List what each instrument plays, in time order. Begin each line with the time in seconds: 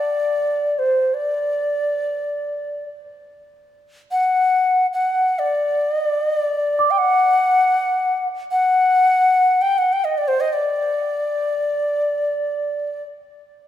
Already playing: native american-style wooden flute D5
0.79 native american-style wooden flute C5
1.14 native american-style wooden flute D5
4.12 native american-style wooden flute F#5
4.93 native american-style wooden flute F#5
5.39 native american-style wooden flute D5
5.94 native american-style wooden flute D#5
6.06 native american-style wooden flute D5
6.79 celesta D6
6.91 native american-style wooden flute G5
6.98 native american-style wooden flute F#5
8.52 native american-style wooden flute F#5
9.62 native american-style wooden flute G5
9.78 native american-style wooden flute F#5
9.93 native american-style wooden flute G5
10.04 native american-style wooden flute D#5
10.18 native american-style wooden flute D5
10.28 native american-style wooden flute C5
10.40 native american-style wooden flute D#5
10.53 native american-style wooden flute D5